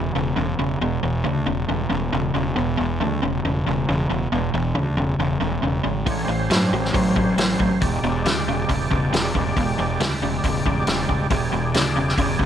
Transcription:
Already playing: fingered electric bass E1, overdriven electric guitar E2 C#3
0.15 fingered electric bass E1, overdriven electric guitar E2 C#3
0.37 fingered electric bass E1, overdriven electric guitar E2 C#3
0.59 fingered electric bass E1, overdriven electric guitar E2 C#3
0.81 fingered electric bass E1, overdriven electric guitar E2 B2
1.03 fingered electric bass E1, overdriven electric guitar E2 B2
1.24 fingered electric bass D2, overdriven electric guitar E2 C#3
1.47 fingered electric bass E1, overdriven electric guitar E2 C#3
1.69 fingered electric bass E1, overdriven electric guitar E2 C#3
1.90 fingered electric bass E1, overdriven electric guitar E2 C#3
2.13 fingered electric bass E1, overdriven electric guitar E2 C#3
2.34 fingered electric bass E1, overdriven electric guitar E2 C#3
2.56 fingered electric bass E1, overdriven electric guitar E2 B2
2.78 fingered electric bass E1, overdriven electric guitar E2 B2
3.01 fingered electric bass D2, overdriven electric guitar E2 C#3
3.22 fingered electric bass E1, overdriven electric guitar E2 C#3
3.45 fingered electric bass E1, overdriven electric guitar E2 C#3
3.67 fingered electric bass E1, overdriven electric guitar E2 C#3
3.89 fingered electric bass E1, overdriven electric guitar E2 C#3
4.10 fingered electric bass E1, overdriven electric guitar E2 C#3
4.32 fingered electric bass E1, overdriven electric guitar E2 B2
4.54 fingered electric bass E1, overdriven electric guitar E2 B2
4.75 fingered electric bass D2, overdriven electric guitar E2 C#3
4.97 fingered electric bass E1, overdriven electric guitar E2 C#3
5.19 fingered electric bass E1, overdriven electric guitar E2 C#3
5.41 fingered electric bass E1, overdriven electric guitar E2 C#3
5.63 fingered electric bass E1, overdriven electric guitar E2 C#3
5.84 fingered electric bass G#1, overdriven electric guitar E2 C#3
6.06 fingered electric bass A1, overdriven electric guitar A2 E3, tonewheel organ G#3 D4 C#5, kick, open hi-hat
6.23 tonewheel organ G3 C#4 C5
6.28 fingered electric bass A1, overdriven electric guitar A2 E3
6.50 fingered electric bass G2, overdriven electric guitar A2 F#3, snare, open hi-hat
6.73 fingered electric bass A1, overdriven electric guitar A2 F#3
6.85 snare
6.94 fingered electric bass A1, overdriven electric guitar A2 F#3, kick, open hi-hat
7.16 fingered electric bass A1, overdriven electric guitar A2 F#3, kick
7.38 fingered electric bass A1, overdriven electric guitar A2 F#3, snare, open hi-hat
7.59 fingered electric bass A1, overdriven electric guitar A2 F#3, kick
7.81 fingered electric bass E1, overdriven electric guitar E2 B2, tonewheel organ G#3 G4 D5, kick, open hi-hat
8.03 fingered electric bass E1, overdriven electric guitar E2 B2
8.26 fingered electric bass D2, overdriven electric guitar E2 C#3, snare, open hi-hat
8.48 fingered electric bass E1, overdriven electric guitar E2 C#3
8.69 fingered electric bass E1, overdriven electric guitar E2 C#3, kick, open hi-hat
8.91 fingered electric bass E1, overdriven electric guitar E2 C#3, kick
9.13 fingered electric bass E1, overdriven electric guitar E2 C#3, snare, open hi-hat
9.34 fingered electric bass E1, overdriven electric guitar E2 C#3, kick
9.56 fingered electric bass E1, overdriven electric guitar E2 B2, kick, open hi-hat
9.78 fingered electric bass E1, overdriven electric guitar E2 B2
10.00 fingered electric bass D2, overdriven electric guitar E2 C#3, snare, open hi-hat
10.22 fingered electric bass E1, overdriven electric guitar E2 C#3
10.44 fingered electric bass E1, overdriven electric guitar E2 C#3, kick, open hi-hat
10.66 fingered electric bass E1, overdriven electric guitar E2 C#3, kick
10.87 fingered electric bass E1, overdriven electric guitar E2 C#3, snare, open hi-hat
11.09 fingered electric bass E1, overdriven electric guitar E2 C#3, kick
11.30 fingered electric bass E1, overdriven electric guitar E2 B2, tonewheel organ G4 G#4 D5, kick, open hi-hat
11.52 fingered electric bass E1, overdriven electric guitar E2 B2
11.74 fingered electric bass D2, overdriven electric guitar E2 C#3, snare, open hi-hat
11.96 fingered electric bass E1, overdriven electric guitar E2 C#3
12.09 snare
12.18 fingered electric bass E1, overdriven electric guitar E2 C#3, kick, open hi-hat
12.39 fingered electric bass E1, overdriven electric guitar E2 C#3, kick

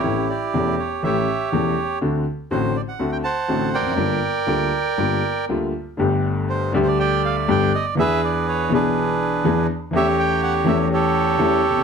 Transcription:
Already playing: bandoneon E4 G4 C#5
0.04 grand piano A1 A2 E3 A3 C#4 G4
0.29 bandoneon G4 D5
0.54 grand piano E1 E2 E3 A3 C#4 G4
0.79 bandoneon C#5
1.03 grand piano A1 A2 E3 A3 C#4 G4, bandoneon G4 C#5 E5
1.52 grand piano E1 E2 E3 A3 C#4 G4
2.01 grand piano D2 D3 A3 C4 F#4
2.51 grand piano A1 A2 D3 A3 C4 F#4, bandoneon C5
2.76 bandoneon D5
2.88 bandoneon F#5
2.99 grand piano D2 D3 A3 C4 F#4
3.12 bandoneon G5
3.24 bandoneon C5 F#5 A5
3.48 grand piano A1 A2 D3 A3 C4 F#4
3.74 bandoneon A#4 D5 G5
3.80 grand piano E2
3.85 grand piano F2
3.91 grand piano F#2
3.97 grand piano G1 G2 D3 G3 A#3 F4
4.47 grand piano D2 D3 G3 A#3 F4
4.98 grand piano G1 G2 D3 G3 A#3 F4
5.49 grand piano D2 D3 G3 A#3 F4
5.97 grand piano G1 G2 D3 G3 A3
6.01 grand piano G4
6.49 bandoneon C5
6.72 grand piano D2 D3 G3 A3 G4, bandoneon D5
6.82 bandoneon C5
6.87 bandoneon D5
7.00 bandoneon D5 G5
7.25 bandoneon F5
7.48 grand piano G1 G2 D3 G3 A3 G4, bandoneon G5
7.75 bandoneon D#5
7.97 grand piano E2 E3 B3 D4 G#4, bandoneon G#4 B4 E5
8.24 bandoneon D5
8.48 bandoneon C#5
8.69 grand piano B1 B2 E3 B3 D4
8.74 bandoneon D4 G#4 B4, grand piano G#4
9.44 grand piano E2 E3 B3 D4 G#4
9.91 grand piano E2 E3 A3 C#4
9.95 grand piano G4, bandoneon G4 C#5 E5
10.19 bandoneon G5
10.43 bandoneon F#5
10.65 grand piano E2 E3 A3 C#4, bandoneon E5
10.69 grand piano G4
10.93 bandoneon G4 A4 C#5
11.39 grand piano E2 E3 A3 C#4 G4
11.70 grand piano B1
11.77 grand piano C2

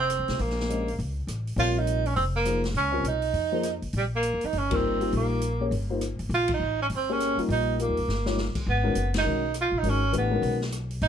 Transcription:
Already playing: upright bass F1
0.00 tenor saxophone C4
0.10 cross-stick, closed hi-hat
0.19 upright bass A#1
0.28 upright bass B1, snare, open hi-hat
0.39 upright bass A#1, tenor saxophone A#3, open hi-hat
0.50 snare
0.60 snare
0.69 upright piano G#3 C#4 G4 C5 D#5, closed hi-hat
0.88 open hi-hat
0.99 upright bass C#2, open hi-hat
1.27 upright bass A1, cross-stick, closed hi-hat
1.47 open hi-hat
1.56 upright bass A#1, upright piano C3 G3 F4 A#4 C#5, tenor saxophone F4, open hi-hat
1.78 tenor saxophone D#4
1.87 closed hi-hat
2.06 tenor saxophone C#4, open hi-hat
2.16 upright bass F1, tenor saxophone C4, open hi-hat
2.36 tenor saxophone A#3
2.45 upright piano F3 A#3 D#4 G#4 C5, cross-stick, closed hi-hat
2.64 snare, open hi-hat
2.74 upright bass C#2, tenor saxophone C#4, open hi-hat
2.91 upright piano G3 C4 F4 A#4 C#5
3.04 upright bass B1, tenor saxophone D#4, closed hi-hat
3.22 open hi-hat
3.33 upright bass F2, open hi-hat
3.52 upright piano F3 A#3 D#4 G#4 C5
3.63 cross-stick, closed hi-hat
3.82 upright bass A1, open hi-hat
3.93 upright bass A#1, open hi-hat
3.97 tenor saxophone G3
4.16 tenor saxophone A#3
4.23 closed hi-hat
4.33 upright bass D#2
4.41 upright bass F2, open hi-hat
4.46 tenor saxophone D#4
4.53 upright bass G1, open hi-hat
4.58 tenor saxophone C#4
4.70 upright piano G3 A#3 D#4 F4 A#4, kick, ride
4.75 tenor saxophone C4
5.01 upright piano G3 A#3 D#4 F4 G4, open hi-hat
5.12 upright bass A#1, open hi-hat
5.17 tenor saxophone A#3
5.41 closed hi-hat
5.60 upright piano A#3 C#4 G4 G#4 C#5
5.71 upright bass G1, open hi-hat
5.90 upright piano G3 A#3 D#4 F4 C5
6.01 cross-stick, closed hi-hat
6.19 upright bass G#1, open hi-hat
6.29 upright bass A#1, open hi-hat
6.34 tenor saxophone F4
6.48 kick, ride
6.54 tenor saxophone D#4
6.60 upright bass A1
6.82 tenor saxophone C#4
6.90 upright bass G1, open hi-hat
6.96 tenor saxophone C4
7.09 upright piano A#3 C#4 G4 G#4 C#5, tenor saxophone C#4
7.20 cross-stick, closed hi-hat
7.37 upright piano G3 A#3 D#4 F4 A#4, muted upright bass stroke, open hi-hat
7.49 upright bass A#1, tenor saxophone D#4, open hi-hat
7.79 upright piano G3 A#3 D#4 F4 A#4, tenor saxophone A#3, closed hi-hat
7.89 upright bass D#2
7.97 upright bass B1, open hi-hat
8.08 upright bass G1, snare
8.26 upright piano G3 A#3 D#4 F4 C#5, snare
8.38 snare
8.55 muted upright bass stroke, kick, crash
8.66 upright bass G#1, tenor saxophone B3
8.83 upright piano D#3 G#3 C#4 F#4 A#4
8.95 upright bass F#1, closed hi-hat
9.14 tenor saxophone D#4, snare, ride
9.24 upright bass B1, upright piano D#3 G#3 C#4 F#4 A#4
9.54 cross-stick, closed hi-hat
9.61 tenor saxophone F4
9.72 upright bass A#1
9.78 tenor saxophone D#4
9.83 upright bass G#1, upright piano D#3 G#3 C#4 F#4 A#4, open hi-hat
9.90 tenor saxophone C#4
10.12 upright bass A1, upright piano E3 A3 D4 G4 B4, closed hi-hat
10.18 tenor saxophone B3
10.31 upright piano D#3 G#3 C#4 F#4 A#4
10.42 upright bass B1, open hi-hat
10.61 snare
10.72 cross-stick, closed hi-hat
10.90 open hi-hat
11.01 upright bass G#1, tenor saxophone D#4, open hi-hat

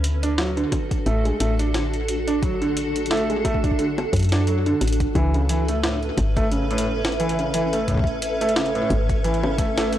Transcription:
Already playing: fm bass D2, ambient pad D4 F#4 A4
0.04 closed hi-hat
0.23 felt piano D4, closed hi-hat
0.38 felt piano F#3, snare
0.57 felt piano D3, closed hi-hat
0.72 kick, closed hi-hat, high bongo
0.91 kick, closed hi-hat
1.06 fm bass A1, felt piano A3, closed hi-hat
1.25 felt piano G#3, closed hi-hat
1.40 fm bass A1, felt piano A3, closed hi-hat
1.59 felt piano D4, closed hi-hat
1.74 felt piano D3, snare, closed hi-hat
1.94 closed hi-hat
2.08 closed hi-hat
2.27 felt piano D4, closed hi-hat
2.43 felt piano F#3, kick, closed hi-hat
2.62 felt piano D3, closed hi-hat
2.77 closed hi-hat
2.96 closed hi-hat
3.06 closed hi-hat
3.11 felt piano A3, snare, closed hi-hat
3.17 closed hi-hat
3.30 felt piano G#3, closed hi-hat
3.45 felt piano A3, kick, closed hi-hat, high bongo
3.54 kick
3.64 felt piano D4, kick, closed hi-hat
3.71 kick
3.79 felt piano D3, closed hi-hat
3.98 closed hi-hat, high bongo
4.13 fm bass F#2, kick, closed hi-hat
4.16 closed hi-hat
4.19 closed hi-hat
4.23 closed hi-hat
4.24 closed hi-hat
4.29 felt piano D4, snare, closed hi-hat
4.32 closed hi-hat
4.47 felt piano F#3, closed hi-hat
4.66 felt piano D3, closed hi-hat
4.81 fm bass A1, closed hi-hat, high bongo
4.88 closed hi-hat
4.93 closed hi-hat
5.00 kick, closed hi-hat
5.15 fm bass C#2, felt piano E3, ambient pad C#4 A4 B4 E5, kick, closed hi-hat
5.34 felt piano C#3, closed hi-hat
5.49 felt piano E3, closed hi-hat
5.68 felt piano A3, closed hi-hat
5.83 felt piano A2, snare, closed hi-hat
6.03 closed hi-hat
6.18 fm bass G#1, kick, closed hi-hat, high bongo
6.37 felt piano A3, kick, closed hi-hat
6.52 felt piano C#3, closed hi-hat
6.71 felt piano A2, closed hi-hat
6.78 closed hi-hat
7.05 snare, closed hi-hat
7.12 closed hi-hat
7.20 felt piano E3, closed hi-hat
7.29 closed hi-hat
7.39 felt piano C#3, closed hi-hat
7.54 felt piano E3, closed hi-hat
7.73 felt piano A3, closed hi-hat
7.88 felt piano A2, kick, closed hi-hat
7.91 kick
7.94 kick
7.98 kick
7.99 kick
8.04 kick, closed hi-hat
8.22 closed hi-hat
8.41 felt piano A3, closed hi-hat
8.49 closed hi-hat
8.56 felt piano C#3, snare, closed hi-hat
8.66 closed hi-hat
8.75 felt piano A2, closed hi-hat
8.90 fm bass G#1, kick, closed hi-hat, high bongo
9.09 kick, closed hi-hat
9.24 felt piano E3, closed hi-hat
9.34 closed hi-hat
9.43 felt piano C#3, high bongo
9.58 felt piano A3, kick, closed hi-hat
9.77 felt piano A3, snare, closed hi-hat
9.92 felt piano A3, closed hi-hat

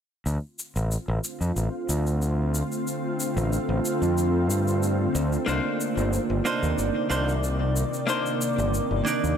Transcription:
0.26 fingered electric bass D2, ambient pad D3 A3 C4 F4, shaker
0.59 shaker
0.76 fingered electric bass A1, shaker
0.91 shaker
1.08 fingered electric bass A1
1.24 shaker
1.41 fingered electric bass F2, shaker
1.56 fingered electric bass A1, shaker
1.89 fingered electric bass D2, shaker
2.07 shaker
2.22 shaker
2.55 shaker
2.72 shaker
2.87 shaker
3.20 shaker
3.37 fingered electric bass A1, shaker
3.53 shaker
3.69 fingered electric bass A1
3.85 shaker
4.02 fingered electric bass F2, shaker
4.18 shaker
4.50 fingered electric bass G2, shaker
4.68 shaker
4.83 shaker
5.15 fingered electric bass D2, shaker
5.33 shaker
5.46 fingered electric bass C2, ambient pad C3 D#3 A#3 D5, hollow-body jazz guitar A#3 D4 D#4 C5, shaker
5.81 shaker
5.97 fingered electric bass G1, shaker
6.13 shaker
6.30 fingered electric bass G1
6.45 hollow-body jazz guitar A#3 D4 D#4 C5, shaker
6.63 fingered electric bass D#2, shaker
6.78 fingered electric bass G1, shaker
7.09 fingered electric bass C2, hollow-body jazz guitar A#3 D4 D#4 C5, shaker
7.29 shaker
7.44 shaker
7.76 shaker
7.94 shaker
8.07 hollow-body jazz guitar A#3 D4 D#4 C5, shaker
8.26 shaker
8.41 shaker
8.58 fingered electric bass G1, shaker
8.74 shaker
8.91 fingered electric bass G1
9.05 hollow-body jazz guitar A#3 D4 D#4 D5, shaker
9.24 fingered electric bass D#2, shaker

